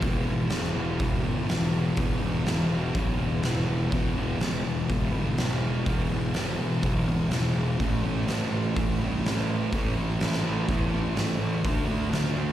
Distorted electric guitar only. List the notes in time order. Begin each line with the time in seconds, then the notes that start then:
0.00 E2 B2
0.05 E3
0.25 E3
0.30 B2
0.49 E2 B2
0.54 E3
0.74 E3
0.78 B2
0.98 E2 B2
1.03 E3
1.23 E3
1.28 B2
1.47 E2 B2
1.52 E3
1.96 E2 B2
2.00 E3
2.19 E3
2.23 B2
2.44 E2 B2
2.49 E3
2.69 E3
2.74 B2
2.94 E2 B2
2.98 E3
3.18 E3
3.23 B2
3.43 E2 B2 E3
3.91 E2 B2
3.96 E3
4.14 E3
4.19 B2
4.38 E2 B2
4.43 E3
4.63 E3
4.68 B2
4.87 E2 B2
4.92 E3
5.11 E3
5.17 B2
5.36 E2 B2
5.41 E3
5.85 E2 B2
5.89 E3
6.09 E3
6.14 B2
6.33 E2 B2
6.37 E3
6.57 E3
6.61 B2
6.81 E2 B2
6.86 E3
7.06 E3
7.11 B2
7.29 E2 B2
7.33 E3
7.77 A2 E3
7.83 A3
8.02 A3
8.07 E3
8.26 A2 E3
8.31 A3
8.49 A3
8.54 E3
8.74 A2 E3
8.79 A3
8.99 A3
9.03 E3
9.23 A2 E3
9.28 A3
9.71 A2 E3
9.75 A3
9.96 A3
10.00 E3
10.19 A2 E3
10.24 A3
10.43 A3
10.48 E3
10.67 A2 E3
10.71 A3
10.90 A3
10.95 E3
11.15 A2 E3
11.20 A3
11.61 D3 A3
11.66 D4
11.85 D4
11.90 A3
12.10 D3 A3
12.15 D4
12.34 D4
12.39 A3